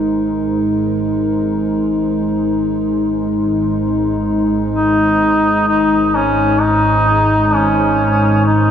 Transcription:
Already playing: G#1 G#2 G#3 D#4 A#4
4.74 D#4
5.68 D#4
6.15 C#4
6.61 D#4
7.55 C#4
8.46 D#4

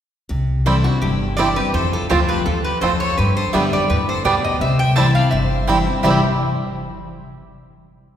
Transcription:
0.29 C2 C3
0.66 E3 G3 C4 E4 A4 C5 G5
0.84 C4 D4 E4 F#4
1.01 G1 G2 E4 G4
1.37 E3 G3 C4 E4 G4 C5 D5 G5
1.56 C4 E4 G4 B4
1.74 F2 A4 C5
1.93 F4 A4
2.09 D2 F3 A3 C4 F4 G4 C5 A5
2.28 G4 B4
2.45 E2 F4 A4
2.64 G4 B4
2.81 F2 A3 C4 F4 A4 C5 A5
3.00 A4 C#5
3.17 G2 G4 B4
3.36 A4 C5
3.53 F2 D3 G3 B3 D4 G4 B4 D5 E5 G5
3.72 B4 D5
3.90 E2 A2 G4 B4
4.08 A4 C5
4.25 D2 B2 G3 B3 D4 G4 B4 D5 G5
4.44 B4 D#5
4.61 C2 C3 C5 E5
4.79 E5 G5
4.95 E3 G3 C4 E4 C5 E5 G5 A5
5.15 C4 E4 D5 F5
5.31 G1 G2 C5 E5
5.67 E3 G3 C4 E4 C5 G5
5.86 C4 E4
6.03 C2 C3 E3 G3 C4 E4 C5 E5 G5
6.08 E4 G4

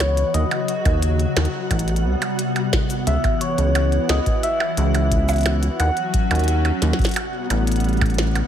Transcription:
Already playing: C#2 E3 B3 E4 F#4 F#5
0.00 C#5, snare, closed hi-hat, percussion blips
0.17 closed hi-hat
0.34 D#2 C#3 F#3 F#4 D#5, closed hi-hat
0.51 closed hi-hat, percussion blips
0.68 closed hi-hat
0.85 D#2, kick, closed hi-hat, percussion blips
1.02 closed hi-hat
1.20 closed hi-hat
1.36 D#2, snare, closed hi-hat, percussion blips
1.45 closed hi-hat
1.71 A1 C3 G3 B3, kick, closed hi-hat, percussion blips
1.79 closed hi-hat
1.88 closed hi-hat
1.96 closed hi-hat
2.05 C2
2.22 closed hi-hat, percussion blips
2.39 closed hi-hat
2.56 closed hi-hat, percussion blips
2.73 kick, snare, closed hi-hat
2.90 closed hi-hat, shaker
3.07 C#2 E3 E4 E5, closed hi-hat
3.24 kick, closed hi-hat, percussion blips
3.41 C#5, closed hi-hat
3.58 C#2, closed hi-hat
3.75 closed hi-hat, percussion blips
3.92 closed hi-hat
4.09 C#2 D#5, snare, closed hi-hat, percussion blips
4.26 kick, closed hi-hat
4.43 E5, closed hi-hat
4.60 percussion blips
4.77 C#2, closed hi-hat
4.95 closed hi-hat, percussion blips
5.12 kick, closed hi-hat
5.29 closed hi-hat, percussion blips, shaker
5.31 closed hi-hat
5.33 closed hi-hat
5.36 closed hi-hat
5.38 closed hi-hat
5.41 closed hi-hat
5.43 snare, closed hi-hat
5.46 closed hi-hat, percussion blips
5.63 closed hi-hat
5.80 D#2 F#3 C#4 F#4 F#5, closed hi-hat, percussion blips
5.97 closed hi-hat
6.14 kick, closed hi-hat
6.31 D#2, closed hi-hat, percussion blips
6.35 closed hi-hat
6.39 closed hi-hat
6.44 closed hi-hat
6.48 closed hi-hat
6.65 closed hi-hat, percussion blips
6.82 D#2, snare, closed hi-hat
6.93 snare
6.99 kick, closed hi-hat
7.02 closed hi-hat
7.04 snare, closed hi-hat
7.06 closed hi-hat
7.09 closed hi-hat
7.11 closed hi-hat
7.14 C3 G3 B3, closed hi-hat
7.16 closed hi-hat, percussion blips
7.50 A1, closed hi-hat, percussion blips
7.67 closed hi-hat
7.72 closed hi-hat
7.76 closed hi-hat
7.80 closed hi-hat
7.84 closed hi-hat
7.89 closed hi-hat
7.93 closed hi-hat
7.97 closed hi-hat
8.01 kick, closed hi-hat, percussion blips
8.06 closed hi-hat
8.10 closed hi-hat
8.14 closed hi-hat
8.18 snare, closed hi-hat
8.27 closed hi-hat
8.31 closed hi-hat
8.35 closed hi-hat, percussion blips

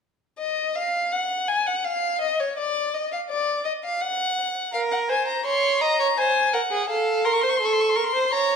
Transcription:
0.39 D#5
0.76 F5
1.12 F#5
1.48 G#5
1.66 F#5
1.85 F5
2.21 D#5
2.40 C#5
2.58 D5
2.94 D#5
3.12 F5
3.30 D5
3.65 D#5
3.84 F5
4.01 F#5
4.73 A#4 F5
4.91 F#5
5.09 C5 G#5
5.27 A#5
5.45 C#5 C6
5.81 D#5 A#5
6.00 C#5
6.18 C5 G#5
6.53 A#4 F#5
6.71 G#4
6.89 A4 F5
7.25 A#4 C6
7.33 C#6
7.41 C5 C6
7.49 C#6
7.57 A4 C6
7.65 C#6
7.73 C6
7.80 C#6
7.89 C6
7.96 A#4 C#6
8.04 C6
8.15 C5
8.32 C#5 A#5

